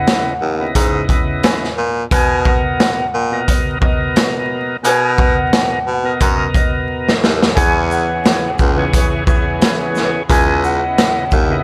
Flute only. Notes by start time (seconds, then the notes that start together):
Already playing: F#5
1.09 E5
2.12 G#5
2.45 F#5
3.82 D#5
4.83 G#5
5.16 F#5
6.54 D#5
7.55 G#5
7.91 F#5
9.25 E5
10.29 G#5
10.64 F#5